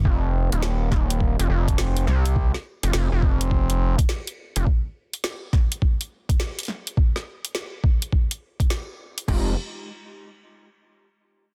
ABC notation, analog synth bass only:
X:1
M:4/4
L:1/16
Q:"Swing 16ths" 1/4=104
K:Fm
V:1 name="Analog synth bass" clef=bass
F,,,3 E,,,3 E,,,3 F,,, F,,,4 C,,2- | C,, z2 F,,, F,,, F,,,6 z4 F,,, | z16 | z16 |
F,,,2 z12 z2 |]